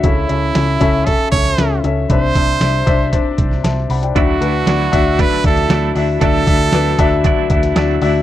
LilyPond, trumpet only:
\new Staff \with { instrumentName = "Trumpet" } { \time 4/4 \key d \mixolydian \tempo 4 = 116 e'2 a'8 cis''4 r8 | c''2 r2 | fis'2 b'8 a'4 r8 | a'2 r2 | }